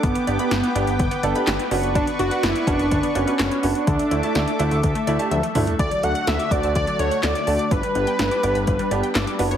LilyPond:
<<
  \new Staff \with { instrumentName = "Analog synth pad" } { \time 4/4 \key d \major \tempo 4 = 125 << { <g'' d'''>2.~ <g'' d'''>8 <d'' cis'''>8~ | <d'' cis'''>1 | <e'' d'''>1 | <a fis'>1 |
<d' b'>2.~ <d' b'>8 cis''8 | } \\ { b'1~ | b'1 | a'1 | d1 |
g2.~ g8 b8 | } >> }
  \new Staff \with { instrumentName = "Analog synth lead" } { \time 4/4 \key d \major b2.~ b8 r8 | d'8 fis'8 e'8 d'4 cis'8 cis'8 d'8~ | d'2~ d'8 r4. | d''8 fis''8 e''8 d''8 d''8 cis''8 d''4 |
b'2.~ b'8 r8 | }
  \new Staff \with { instrumentName = "Grand piano" } { \time 4/4 \key d \major r8 <b d' g'>16 <b d' g'>16 r8 <b d' g'>16 r8. <b d' a'>16 <b d' g'>16 r8 <b d' fis'>8~ | <b d' fis'>16 r16 <b d' fis'>16 <b d' fis'>16 r8 <b d' fis'>16 r8. <b d' fis'>16 <b d' fis'>16 r8 <b d' fis'>16 r16 | r8 <a d' e'>16 <a d' e'>16 r8 <a d' e'>16 r8. <a d' e'>16 <a d' g'>16 r8 <a d' e'>16 r16 | r8 <a d' fis'>16 r8. <a d' fis'>16 r8. <a d' fis'>16 r8. <a d' fis'>16 r16 |
r8 <b d' g'>16 r8. <b d' g'>16 r8. <b d' g'>16 r8. <b d' fis'>8 | }
  \new Staff \with { instrumentName = "Synth pluck" } { \time 4/4 \key d \major d16 b16 d''16 b''16 g''16 b16 d'16 b16 d16 b16 d''16 b''16 g''16 b16 cis'16 r16 | d16 b16 d'16 b'16 fis'16 b16 cis'16 b16 d16 b16 d'16 b'16 fis'16 b16 cis'16 r16 | d16 a16 d''16 a''16 e''16 a16 d'16 a16 d16 a16 d''16 a''16 e''16 a16 d'16 r16 | d16 fis16 r16 fis''16 r16 d'''16 d'''16 a''16 d16 fis16 d''16 fis''16 d'''16 d'''16 a''16 d'''16 |
d16 g16 r16 g''16 r16 d'''16 d'''16 b''16 d16 g16 d''16 g''16 d'''16 d'''16 b'16 cis''16 | }
  \new Staff \with { instrumentName = "Analog synth bass" } { \clef bass \time 4/4 \key d \major g,,16 r16 g,,16 r16 g,,16 r16 g,,16 g,,16 g,,16 r16 g,,16 r16 g,,16 r16 fis,,8~ | fis,,16 r16 fis,,16 r16 fis,,16 r16 fis,,16 fis,,16 fis,,16 r16 fis,,16 r16 fis,,16 r16 fis,,16 r16 | d,16 r16 d,16 r16 d,16 r16 d,16 d,16 d,16 r16 d,16 r16 d,16 r16 d,16 r16 | d,16 r16 d,16 r16 d,16 r16 d,16 d,16 d,16 r16 d,16 r16 d,16 r16 d,16 r16 |
g,,16 r16 g,,16 r16 g,,16 r16 g,,16 g,,16 g,,16 r16 g,,16 r16 g,,16 r16 fis,,8 | }
  \new DrumStaff \with { instrumentName = "Drums" } \drummode { \time 4/4 <hh bd>16 hh16 hh16 hh16 <hh sn>16 hh16 hh16 hh16 <hh bd>16 hh16 hh16 hh16 <hc hh sn>16 hh16 hho16 hh16 | <hh bd>16 hh16 hh16 hh16 <hh sn>16 hh16 <hh bd>16 hh16 <hh bd>16 hh16 hh16 hh16 <hc hh sn>16 hh16 hho16 hh16 | <hh bd>16 hh16 hh16 hh16 <hh sn>16 hh16 hh16 hh16 <hh bd>16 hh16 hh16 hh16 <hh tommh>16 hh16 <hho toml>16 <hh tomfh>16 | <hh bd>16 hh16 hh16 hh16 <hh sn>16 hh16 <hh bd>16 hh16 <hh bd>16 hh16 hh16 hh16 <hc hh sn>16 hh16 hho16 hh16 |
<hh bd>16 hh16 hh16 hh16 <hh sn>16 hh16 hh16 hh16 <hh bd>16 hh16 hh16 hh16 <hc hh sn>16 hh16 hho16 hh16 | }
>>